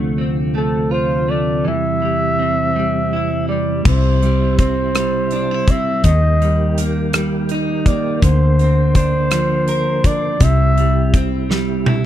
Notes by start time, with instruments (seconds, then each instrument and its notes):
Already playing: tonewheel organ D2 C3 F3, clean electric guitar D3 A3
0.18 clean electric guitar C4
0.55 clean electric guitar A3, flugelhorn A4
0.91 clean electric guitar F4, flugelhorn C5
1.28 clean electric guitar A3, flugelhorn D5
1.65 tonewheel organ E2 G3, clean electric guitar E3, flugelhorn E5
2.02 clean electric guitar G3
2.39 clean electric guitar C4
2.76 clean electric guitar G3
3.13 clean electric guitar E4
3.48 clean electric guitar G3, flugelhorn D5
3.85 fingered electric bass C2, clean electric guitar C3, tonewheel organ C3 G3 E4, flugelhorn C5, kick, crash
4.23 clean electric guitar G3, closed hi-hat
4.59 clean electric guitar C4, flugelhorn C5, kick, closed hi-hat
4.95 clean electric guitar G3, cross-stick, closed hi-hat
5.31 clean electric guitar D4, closed hi-hat
5.51 clean electric guitar E4
5.67 clean electric guitar C4, flugelhorn E5, kick, closed hi-hat
6.04 fingered electric bass D#2, tonewheel organ D#3 A#3 G4, clean electric guitar D#3, flugelhorn D#5, kick, closed hi-hat
6.42 clean electric guitar G3, closed hi-hat
6.78 clean electric guitar A#3, closed hi-hat
7.13 clean electric guitar G3, cross-stick, closed hi-hat
7.49 clean electric guitar D#4, closed hi-hat
7.86 clean electric guitar A#3, flugelhorn D5, kick, closed hi-hat
8.22 fingered electric bass D2, tonewheel organ D3 C5, clean electric guitar D3, flugelhorn C5, kick, closed hi-hat
8.59 clean electric guitar C4, closed hi-hat
8.95 clean electric guitar D4, flugelhorn C5, kick, closed hi-hat
9.31 clean electric guitar F3, cross-stick, closed hi-hat
9.68 clean electric guitar A#4, closed hi-hat
10.04 clean electric guitar D4, flugelhorn D5, kick, closed hi-hat
10.40 fingered electric bass C2, tonewheel organ C3 G3 E4, clean electric guitar C3, flugelhorn E5, kick, closed hi-hat
10.78 clean electric guitar G3, closed hi-hat
11.14 clean electric guitar C4, kick, closed hi-hat
11.50 clean electric guitar G3, snare
11.86 clean electric guitar E4, high tom